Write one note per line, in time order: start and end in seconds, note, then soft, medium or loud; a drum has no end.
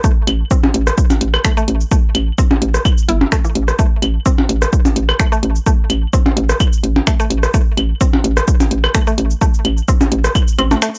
0.04 0.07 A3 medium
0.04 kick loud
0.04 cabasa medium
0.27 0.44 A1 loud
0.27 closed hi-hat loud
0.27 claves medium
0.51 0.53 C4 medium
0.51 kick loud
0.51 cabasa medium
0.64 percussion blips loud
0.74 0.91 A1 loud
0.74 closed hi-hat loud
0.87 cross-stick medium
0.87 cabasa soft
0.98 kick loud
0.98 cabasa medium
1.10 percussion blips medium
1.10 cabasa soft
1.21 1.38 A1 medium
1.21 closed hi-hat loud
1.34 cross-stick medium
1.34 claves medium
1.44 1.50 A3 medium
1.44 finger snap loud
1.44 kick loud
1.44 cabasa medium
1.57 1.62 A3 loud
1.57 cabasa soft
1.68 1.84 A1 loud
1.68 closed hi-hat loud
1.81 cabasa soft
1.91 1.95 A3 medium
1.91 kick loud
1.91 cabasa medium
2.15 2.31 A1 medium
2.15 closed hi-hat loud
2.15 claves medium
2.38 2.40 C4 medium
2.38 kick loud
2.38 cabasa medium
2.51 percussion blips medium
2.62 2.78 A1 loud
2.62 closed hi-hat medium
2.74 cross-stick medium
2.74 cabasa soft
2.85 kick loud
2.85 cabasa medium
2.85 claves medium
2.98 cabasa soft
3.08 3.25 G1 medium
3.08 3.12 E4 medium
3.08 closed hi-hat loud
3.21 percussion blips medium
3.32 3.35 A3 loud
3.32 finger snap loud
3.32 kick loud
3.32 cabasa medium
3.45 3.47 E3 medium
3.45 cabasa soft
3.55 3.72 A1 loud
3.55 closed hi-hat loud
3.68 cross-stick medium
3.68 cabasa soft
3.79 3.82 A3 medium
3.79 kick loud
3.79 cabasa medium
4.02 4.19 A1 loud
4.02 closed hi-hat medium
4.02 claves medium
4.26 4.28 C4 medium
4.26 kick loud
4.26 cabasa medium
4.38 percussion blips medium
4.49 4.66 A1 loud
4.49 closed hi-hat medium
4.62 cross-stick medium
4.62 cabasa soft
4.73 kick loud
4.73 cabasa medium
4.85 percussion blips medium
4.85 cabasa soft
4.96 5.13 A1 medium
4.96 closed hi-hat medium
5.09 cross-stick medium
5.09 claves medium
5.19 5.25 A3 medium
5.19 finger snap loud
5.19 kick loud
5.19 cabasa medium
5.32 5.37 A3 loud
5.32 cabasa soft
5.43 5.59 A1 loud
5.43 closed hi-hat medium
5.56 cabasa soft
5.66 5.70 A3 medium
5.66 kick loud
5.66 cabasa medium
5.90 6.06 A1 medium
5.90 closed hi-hat medium
5.90 claves medium
6.13 6.15 C4 medium
6.13 kick loud
6.13 cabasa medium
6.26 percussion blips medium
6.37 6.53 A1 loud
6.37 closed hi-hat medium
6.49 cross-stick medium
6.49 cabasa soft
6.60 kick loud
6.60 cabasa medium
6.60 claves medium
6.73 cabasa soft
6.83 7.00 A1 medium
6.83 closed hi-hat medium
6.96 percussion blips medium
7.07 7.12 A3 medium
7.07 finger snap loud
7.07 kick loud
7.07 cabasa medium
7.20 7.24 A3 loud
7.20 cabasa soft
7.30 7.47 A1 loud
7.30 closed hi-hat medium
7.43 cross-stick medium
7.43 cabasa soft
7.54 7.57 A3 medium
7.54 kick loud
7.54 cabasa medium
7.77 7.94 A1 medium
7.77 closed hi-hat medium
7.77 claves medium
8.01 8.03 C4 medium
8.01 kick loud
8.01 cabasa medium
8.13 percussion blips medium
8.24 8.41 A1 loud
8.24 closed hi-hat medium
8.37 cross-stick medium
8.37 cabasa soft
8.48 kick loud
8.48 cabasa medium
8.60 percussion blips medium
8.60 cabasa soft
8.71 8.88 A1 medium
8.71 closed hi-hat medium
8.84 cross-stick medium
8.84 claves medium
8.94 9.00 A3 medium
8.94 finger snap loud
8.94 kick loud
8.94 cabasa medium
9.07 9.12 A3 loud
9.07 cabasa soft
9.18 9.34 A1 loud
9.18 closed hi-hat medium
9.31 cabasa soft
9.41 9.45 A3 medium
9.41 kick loud
9.41 cabasa medium
9.54 cabasa soft
9.65 9.81 A1 loud
9.65 closed hi-hat medium
9.65 claves medium
9.78 cabasa soft
9.88 9.90 C4 medium
9.88 kick loud
9.88 cabasa medium
10.01 percussion blips loud
10.01 cabasa soft
10.12 10.28 A1 loud
10.12 closed hi-hat medium
10.24 cross-stick medium
10.24 cabasa soft
10.35 kick loud
10.35 cabasa medium
10.35 claves medium
10.48 cabasa soft
10.59 10.75 A1 loud
10.59 10.64 C4 medium
10.59 closed hi-hat medium
10.59 claves medium
10.71 10.76 A3 medium
10.71 percussion blips medium
10.71 cabasa soft
10.82 10.87 A3 medium
10.82 finger snap loud
10.82 cabasa medium
10.95 cabasa soft